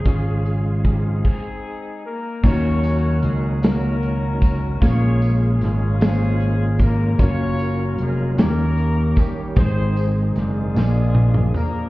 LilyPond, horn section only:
\new Staff \with { instrumentName = "Horn section" } { \time 6/8 \key ees \dorian \tempo 4. = 51 << { r4 <aes aes'>4. <bes bes'>8 | <des' des''>4 <aes aes'>8 <bes bes'>4 <bes bes'>8 | <des' des''>8 r8 <aes aes'>4. <bes bes'>8 | <des' des''>4 <aes aes'>8 <bes bes'>4 <g g'>8 |
<c' c''>8 r8 <aes aes'>4. <bes bes'>8 | } \\ { r4 <c' ees'>4. r8 | <ges' bes'>4. <des' ges'>4. | <f' aes'>4 <des' f'>4. r8 | <f' bes'>4. <des' g'>4. |
<ees' aes'>4 <d' f'>4. r8 | } >> }